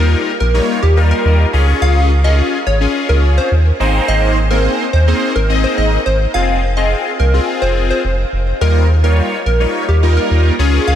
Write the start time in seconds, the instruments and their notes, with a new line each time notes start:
Already playing: sub bass D#2, analog polysynth G3 A#3 D#4 F4, digital synth lead A#4
0.00 analog polysynth A#4
0.40 sub bass A#1, digital synth lead A#4
0.54 analog polysynth G3 A#3 D#4 F4 C#5
0.82 sub bass D#2, digital synth lead G4
0.96 analog polysynth G3 A#3 D#4 F4 A#4
1.11 digital synth lead A#4
1.25 sub bass D#2
1.53 sub bass C#2, analog polysynth C#4 F4 G#4
1.82 sub bass C#2, digital synth lead F5
2.24 analog polysynth C#4 F4 G#4, digital synth lead D#5
2.67 sub bass G#1, digital synth lead C#5
2.81 analog polysynth C#4 F4 G#4
3.09 sub bass C#2, digital synth lead A#4
3.38 digital synth lead C5
3.51 sub bass D#2
3.80 sub bass G#1, analog polysynth A#3 C4 D#4 G#4 C5
4.08 sub bass G#1, digital synth lead D#5
4.51 analog polysynth A#3 C4 D#4 G#4 C5, digital synth lead A#4
4.93 sub bass D#2, digital synth lead C5
5.07 analog polysynth A#3 C4 D#4 G#4 C5
5.35 sub bass G#1, digital synth lead A#4
5.49 analog polysynth A#3 C4 D#4 G#4 D#5
5.64 digital synth lead C5
5.78 sub bass G#1, digital synth lead D#5
6.06 sub bass G#1, digital synth lead C5
6.34 sub bass F1, analog polysynth C4 F4 G#4, digital synth lead F5
6.77 analog polysynth C4 F4 G#4, digital synth lead D#5
7.19 sub bass C2, digital synth lead A#4
7.34 analog polysynth C4 F4 G#4
7.62 sub bass F1, digital synth lead C5
7.90 digital synth lead C5
8.04 sub bass F1
8.33 sub bass F1
8.61 sub bass D#2, analog polysynth G3 A#3 D#4 F4 A#4, digital synth lead A#4
9.03 analog polysynth G3 A#3 D#4 F4 C#5, digital synth lead A#4
9.46 sub bass A#1, digital synth lead A#4
9.60 analog polysynth G3 A#3 D#4 F4 C#5
9.88 sub bass D#2, digital synth lead G4
10.02 analog polysynth G3 A#3 D#4 F4 A#4
10.17 digital synth lead A#4
10.31 sub bass D#2
10.59 sub bass C#2, analog polysynth C#4 F4 G#4
10.87 sub bass C#2, digital synth lead F5